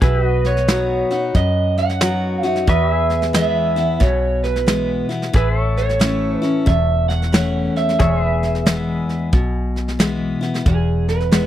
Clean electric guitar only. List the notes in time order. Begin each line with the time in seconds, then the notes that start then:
0.03 B4
0.46 C#5
1.36 D#5
1.78 F#5
2.43 E5
2.69 E5
3.35 E5
4.01 C#5
4.44 B4
5.36 B4
5.78 C#5
6.39 B4
6.67 E5
7.09 F#5
7.77 E5
10.68 G#4
11.09 B4